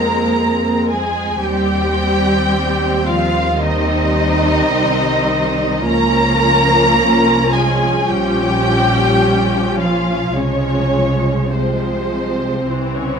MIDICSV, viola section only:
0, 0, Header, 1, 2, 480
1, 0, Start_track
1, 0, Key_signature, -4, "minor"
1, 0, Tempo, 1086957
1, 632, Time_signature, 4, 2, 24, 8
1, 2076, Tempo, 1169591
1, 2556, Tempo, 1121495
1, 4476, Tempo, 1156069
1, 5654, End_track
2, 0, Start_track
2, 0, Title_t, "Viola section"
2, 0, Program_c, 0, 48
2, 0, Note_on_c, 0, 56, 36
2, 0, Note_on_c, 0, 60, 33
2, 616, Note_off_c, 0, 56, 0
2, 616, Note_off_c, 0, 60, 0
2, 629, Note_on_c, 0, 60, 43
2, 630, Note_on_c, 0, 55, 43
2, 1574, Note_off_c, 0, 60, 0
2, 1589, Note_off_c, 0, 55, 0
2, 1594, Note_on_c, 0, 55, 51
2, 1596, Note_on_c, 0, 60, 49
2, 2540, Note_off_c, 0, 55, 0
2, 2541, Note_off_c, 0, 60, 0
2, 2557, Note_on_c, 0, 53, 52
2, 2559, Note_on_c, 0, 61, 50
2, 3491, Note_off_c, 0, 53, 0
2, 3492, Note_off_c, 0, 61, 0
2, 3508, Note_on_c, 0, 53, 48
2, 3508, Note_on_c, 0, 61, 46
2, 4459, Note_off_c, 0, 53, 0
2, 4459, Note_off_c, 0, 61, 0
2, 4479, Note_on_c, 0, 53, 37
2, 4481, Note_on_c, 0, 56, 36
2, 4945, Note_off_c, 0, 53, 0
2, 4946, Note_off_c, 0, 56, 0
2, 4954, Note_on_c, 0, 53, 38
2, 4954, Note_on_c, 0, 56, 37
2, 5428, Note_off_c, 0, 53, 0
2, 5428, Note_off_c, 0, 56, 0
2, 5436, Note_on_c, 0, 52, 40
2, 5437, Note_on_c, 0, 60, 39
2, 5654, Note_off_c, 0, 52, 0
2, 5654, Note_off_c, 0, 60, 0
2, 5654, End_track
0, 0, End_of_file